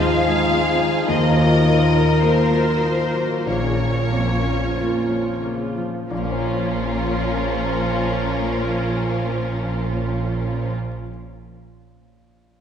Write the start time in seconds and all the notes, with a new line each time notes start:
Already playing: G#2 D#3 F3 G#3 D#4 F4 F5
0.00 G#3 D#4 F4 G#4
0.26 G#3 D#4
0.52 G#3 C4
0.80 D#3 D#4
1.07 D#2 D#3 F3 A#4 D#5
1.36 F#3 A#3
1.64 A#2 A#3 D#4
1.93 D#4 F4
2.21 A#3 D#4 F4 A#4 C5
2.52 F#3 F4
2.82 F3 A#3 D#4
3.13 F#3 A#3
3.44 A#1 A#2 C#3 C#4 F4 A#4 C#5
3.49 F3
3.77 F3
4.09 F2 A#3
4.41 C#4
4.75 A#3 C#4 F4
5.08 F3 C#4
5.42 C#3 A#3
5.77 F3
6.10 A#1 A#2 F3 A#3 C#4 F4 A#4
6.18 A#2 A#3
6.24 A#3 C#4
6.32 C#4 F4
6.38 F4 C#5
6.47 C#5